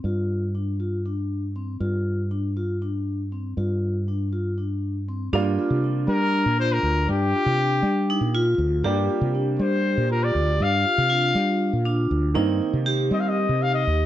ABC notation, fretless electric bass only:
X:1
M:7/8
L:1/16
Q:1/4=120
K:Gm
V:1 name="Fretless electric bass" clef=bass
G,,12- G,,2 | G,,12- G,,2 | G,,12- G,,2 | G,,2 z C,3 G,3 B,,3 D,,2 |
G,,2 z C,3 G,3 B,,3 D,,2 | G,,2 z C,3 G,3 B,,3 D,,2 | G,,2 z C,3 G,3 B,,3 D,,2 | G,,2 z C,3 G,3 C,3 E,,2 |]